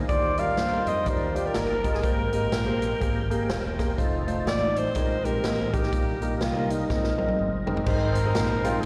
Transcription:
0.09 D#2 D#3 G3 D#4 F4 C5 D5, kick, closed hi-hat
0.38 G3 D#4 F4 A#4 D5 F5, closed hi-hat
0.57 G2 C5, snare, closed hi-hat
0.72 G3 D#4 F4 A#4
0.86 F2 D#5, closed hi-hat
1.06 D#2 G3 D#4 F4 A#4 C5 D5, kick, closed hi-hat
1.34 G3 D#4 F4 G4 D5, closed hi-hat
1.46 A#4
1.54 G1 A#4, snare, closed hi-hat
1.84 G3 D#4 F4 A#4 D#5, kick, closed hi-hat
1.94 G#4, snare
2.03 G#1 G#2 G#3 A#3 C4 G4 G#4 A4 A#4 C5 G5, kick, closed hi-hat
2.10 A#4
2.32 A#3 G4 G#4 D#5, closed hi-hat
2.52 A#1, snare, closed hi-hat
2.66 A#3 G4 G#4 C5
2.82 closed hi-hat
3.00 G#1 A#3 G4 G#4 A#4, kick, closed hi-hat
3.30 A#3 G4 G#4 A#4, closed hi-hat
3.49 E1, snare, closed hi-hat
3.79 A#3 G4 G#4 A#4, kick, snare, closed hi-hat
3.97 F1 F3 A3 C4 D#4 F4 A4 C5, kick, closed hi-hat
4.26 A3 D#4 F4 C5, closed hi-hat
4.46 A1 D5, snare, closed hi-hat
4.62 A3 D#4 F4 D5
4.76 C5, closed hi-hat
4.95 A#1 A#2 G#3 C4 D#4 G#4 A#4, kick, closed hi-hat
5.01 A#4
5.24 G#3 C4 D#4 G4 A#4, closed hi-hat
5.44 A1, snare, closed hi-hat
5.73 G#3 C4 D#4 G4 A#4, kick, closed hi-hat
5.83 snare
5.92 A#1 A#2 G3 A#3 D#4 A#4, kick, closed hi-hat
6.21 G3 A#3 D#4 A#4, closed hi-hat
6.36 G4
6.41 C2 F4, snare, closed hi-hat
6.55 G3 A#3 D#4 A#4
6.70 D#4, closed hi-hat
6.88 A#1 A#2 G#3 C4 D#4 A#4, kick, snare
7.04 snare
7.17 G#3 C4 D#4 A#4, high tom
7.28 high tom
7.39 G1
7.66 G#3 C4 D#4 A#4, floor tom
7.77 floor tom
7.86 G#1 G#2 G#3 C4 D#4 A#4 C5, kick, crash
8.15 closed hi-hat
8.25 G#3 C4 D#4 D#5
8.35 A#1, snare, closed hi-hat
8.64 G#3 C4 D#4 F4, closed hi-hat
8.81 G#4

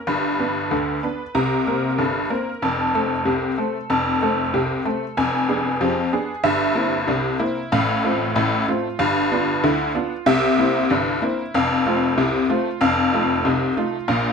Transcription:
0.07 G1 G2 B5
0.40 B3 D4 B4
0.71 D2 D3 A4
1.03 B3 D4 B4
1.35 C2 C3 A#5
1.67 A#3 C4 A#4
1.98 G1 G2 A4
2.30 A#3 C4 A#4
2.62 F1 F2 A5
2.95 A3 C4 A4
3.25 C2 C3 G4
3.58 A3 C4 A4
3.90 F1 F2 A5
4.22 A3 C4 A4
4.54 C2 C3 G4
4.85 A3 C4 A4
5.17 F1 F2 G#5
5.49 B3 D4 G#4
5.81 F2 F3 G4
6.13 B3 D4 G#4
6.44 G1 G2 E5
6.75 A#3 C4 E4
7.07 C2 C3 D4
7.40 A#3 C4 E4
7.72 A1 A2 F5
8.04 A3 C4 F4
8.36 A1 A2 E4
8.68 A3 C4 F4
8.99 G1 G2 F5
9.32 B3 D4 F4
9.64 D2 D3 E4
9.95 B3 D4 F4
10.26 C2 C3 E5
10.59 A#3 C4 E4
10.90 G1 G2 D4
11.22 A#3 C4 E4
11.54 F1 F2 F5
11.86 A3 C4 F4
12.18 C2 C3 E4
12.49 A3 C4 F4
12.81 F1 F2 F5
13.13 A3 D#4 F4
13.45 C2 C3 D#4
13.77 A3 D#4 F4
14.08 A#1 A#2 F5

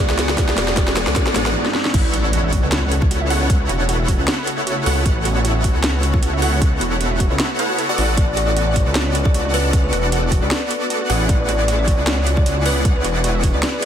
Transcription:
Already playing: C#2 E3 G#3 D4 F#4, riser
0.00 B3 D4 E4 F#4 G#4 D5 F#5
0.10 snare
0.19 D5, snare, closed hi-hat
0.29 snare
0.36 G#3 B3 D4 E4 F#4 G#4 D5 F#5, kick, snare, closed hi-hat
0.40 F#4
0.49 snare
0.55 E1 G#3 B3 D4 E4 F#4 G#4 D5 F#5, snare, closed hi-hat
0.59 F#4
0.68 snare
0.75 G#3 B3 D4 F#4 G#4 D5 F#5, kick, snare, closed hi-hat
0.79 F#4
0.88 snare
0.94 G#3 B3 D4 E4 F#4 G#4 D5 F#5, snare, closed hi-hat
0.98 F#4
1.07 C#2, snare
1.14 G#3 B3 D4 E4 F#4 G#4 D5 F#5, kick, snare, closed hi-hat
1.18 F#4
1.27 snare
1.33 A1 G#3 B3 D4 E4 F#4 G#4 D5 F#5, snare, closed hi-hat
1.37 F#4
1.46 snare
1.66 snare
1.75 snare
1.85 snare
1.94 A1 C#3 A3 B3 E4 F#4 A4 C#5 F#5, kick, closed hi-hat, crash, impact
2.05 B4
2.13 F#4, closed hi-hat
2.24 C#5
2.33 F#4, closed hi-hat
2.44 E5
2.52 F#4, kick, closed hi-hat
2.63 C#2 B4
2.72 C#2 F#4, snare, closed hi-hat
2.83 B4
2.91 F#4, closed hi-hat
3.02 C#5, kick
3.11 F#4, closed hi-hat
3.21 E5
3.30 B3 E4 F#4 A4 C#5 F#5, open hi-hat
3.41 F#5
3.50 B3 E4 F#4 A4 C#5 F#5, kick, closed hi-hat
3.60 B4
3.69 E1 F#4, closed hi-hat
3.80 C#5
3.89 F#4, closed hi-hat
3.99 E5
4.08 F#4, kick, closed hi-hat
4.19 C#2 B4
4.28 F#4, snare, closed hi-hat
4.38 B4
4.47 F#4, closed hi-hat
4.58 C#5
4.67 F#4, closed hi-hat
4.77 E5
4.86 C#2 B3 E4 F#4 A4 C#5 F#5, open hi-hat
4.97 F#5
5.05 A1 B3 E4 F#4 A4 C#5 F#5, kick, closed hi-hat
5.16 B4
5.25 F#4, closed hi-hat
5.36 C#5
5.44 F#4, closed hi-hat
5.55 E5
5.64 F#4, kick, closed hi-hat
5.75 C#2 B4
5.84 C#2 F#4, snare, closed hi-hat
5.94 B4
6.03 F#4, closed hi-hat
6.14 C#5, kick
6.23 F#4, closed hi-hat
6.33 E5
6.42 B3 E4 F#4 A4 C#5 F#5, open hi-hat
6.52 F#5
6.61 B3 E4 F#4 A4 C#5 F#5, kick, closed hi-hat
6.72 B4
6.81 E1 F#4, closed hi-hat
6.92 C#5
7.00 F#4, closed hi-hat
7.11 E5
7.20 F#4, kick, closed hi-hat
7.31 C#2 B4
7.39 F#4, snare, closed hi-hat
7.50 B4
7.59 B3 E4 A4 B4 C#5 F#5, closed hi-hat
7.70 F#4
7.79 A4, closed hi-hat
7.89 B3 F#4 A4 D5 F#5
7.98 A1 D4 D5, open hi-hat
8.09 A4
8.17 A1 B3 F#4 A4 D5 F#5, kick, closed hi-hat
8.28 B4
8.37 F#4 D5, closed hi-hat
8.48 D5
8.57 F#4, closed hi-hat
8.67 D5 F#5
8.76 F#4, kick, closed hi-hat
8.87 C#2 B4
8.95 C#2 F#4 C#5, snare, closed hi-hat
9.06 B4
9.15 F#4, closed hi-hat
9.25 D5, kick
9.34 F#4, closed hi-hat
9.45 F#4
9.54 B3 F#4 A4 B4 D5 F#5, open hi-hat
9.64 A5
9.73 B3 F#4 F#5, kick, closed hi-hat
9.84 B4
9.93 E1 F#4, closed hi-hat
10.03 D5
10.12 F#4, closed hi-hat
10.23 F#5
10.32 F#4, kick, closed hi-hat
10.42 C#2 B4 D5
10.51 F#4, snare, closed hi-hat
10.62 B4
10.71 F#4, closed hi-hat
10.81 D5
10.90 F#4, closed hi-hat
11.01 F#4
11.10 A1 E3 G#3 B3 D4 E4 F#4 G#4 D5 F#5, open hi-hat
11.20 F#5
11.29 A1 B3 F#4 D5 F#5, kick, closed hi-hat
11.40 B4
11.48 F#4 D5, closed hi-hat
11.59 D5
11.68 F#4, closed hi-hat
11.79 D5 E5
11.87 F#4, kick, closed hi-hat
11.98 C#2 B4
12.07 C#2 F#4 C#5, snare, closed hi-hat
12.18 B4
12.27 F#4, closed hi-hat
12.37 D5, kick
12.46 F#4, closed hi-hat
12.57 F#4
12.65 B3 E4 F#4 G#4 B4 D5 F#5, open hi-hat
12.76 F#5
12.85 B3 F#4 F#5, kick, closed hi-hat
12.96 B4
13.04 E1 F#4, closed hi-hat
13.15 D5
13.24 F#4, closed hi-hat
13.35 E5
13.43 F#4, kick, closed hi-hat
13.54 C#2 B4 D5
13.63 F#4, snare, closed hi-hat
13.73 B4

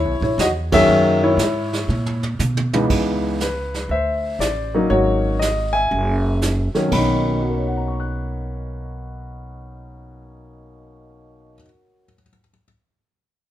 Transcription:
Already playing: E4 C#5
0.05 B1
0.21 A#1 E4 C#5, kick
0.38 E2 F#4 D#5, snare, hi-hat pedal
0.72 D#3 F#3 A#3 C#4 G#4 E5, kick, ride
0.88 F#2, brush sweep
1.24 E4 C#5
1.37 G#2, snare, hi-hat pedal
1.73 snare
1.89 A#2, mid tom
2.06 mid tom
2.23 mid tom
2.39 B2, hi-hat pedal, high tom
2.57 high tom
2.73 C#2 E3 G#3 B3 D#4, high tom
2.90 C#2, brush sweep, kick, crash
3.40 B4, snare, hi-hat pedal
3.74 snare
3.89 D2 C5 E5, brush sweep
4.39 A1 D5, snare, hi-hat pedal
4.74 F#3 A#3 C#4 D#4
4.90 G#1 F#4 C#5, brush sweep
5.39 D#5, snare, hi-hat pedal
5.73 E5 G#5
5.91 F#1, brush sweep
6.42 snare, hi-hat pedal
6.75 D#3 F#3 A#3 C#4, muted upright bass stroke, snare
6.86 B2 A#3
6.92 B1 C#4 B5, kick, crash
6.98 D#4
7.42 F#4
7.50 A#4
7.58 C#5
7.67 F#5
7.77 A#5
7.88 C#6
8.00 F#6

